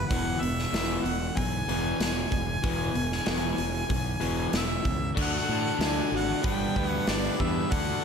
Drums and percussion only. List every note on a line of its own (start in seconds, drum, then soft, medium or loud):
0.11 kick loud
0.11 open hi-hat medium
0.43 open hi-hat soft
0.59 snare soft
0.74 snare loud
0.74 open hi-hat medium
1.06 open hi-hat soft
1.37 kick medium
1.37 open hi-hat medium
1.69 open hi-hat soft
2.00 snare loud
2.00 open hi-hat medium
2.32 kick medium
2.32 open hi-hat soft
2.64 kick loud
2.64 open hi-hat medium
2.95 open hi-hat soft
3.12 snare soft
3.26 snare loud
3.26 open hi-hat medium
3.58 open hi-hat soft
3.90 kick medium
3.90 open hi-hat medium
4.21 open hi-hat soft
4.53 snare loud
4.53 open hi-hat medium
4.85 kick medium
4.85 open hi-hat soft
5.17 kick loud
5.17 crash loud
5.81 snare loud
5.81 open hi-hat medium
6.43 kick loud
6.43 open hi-hat medium
6.76 kick medium
7.07 snare loud
7.07 open hi-hat medium
7.40 kick medium
7.72 kick loud
7.72 open hi-hat medium